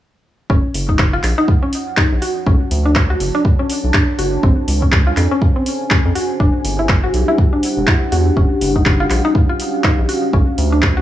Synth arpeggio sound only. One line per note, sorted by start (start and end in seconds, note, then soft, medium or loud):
0.50 0.56 C#4 loud
0.89 0.91 D#4 medium
1.13 1.16 F4 loud
1.38 1.41 D#4 loud
1.63 1.69 C#4 medium
1.97 2.04 D#4 medium
2.22 2.31 F#4 medium
2.47 2.53 C#4 loud
2.86 2.88 D4 medium
3.10 3.13 F#4 loud
3.35 3.37 D4 loud
3.59 3.66 C#4 medium
3.94 4.00 D4 medium
4.19 4.28 F#4 medium
4.43 4.50 C4 loud
4.82 4.85 C#4 medium
5.07 5.09 F4 loud
5.31 5.34 C#4 loud
5.56 5.63 C4 medium
5.91 5.97 C#4 medium
6.15 6.25 F#4 medium
6.40 6.46 D4 loud
6.79 6.82 E4 medium
7.04 7.06 F#4 loud
7.28 7.31 E4 loud
7.53 7.59 D4 medium
7.88 7.94 E4 medium
8.12 8.21 F#4 medium
8.37 8.43 C#4 loud
8.76 8.78 D#4 medium
9.00 9.03 F4 loud
9.25 9.28 D#4 loud
9.49 9.54 F4 medium
9.84 9.90 D#4 medium
10.09 10.18 F#4 medium
10.33 10.40 C#4 loud
10.72 10.75 D4 medium
10.97 11.00 F#4 loud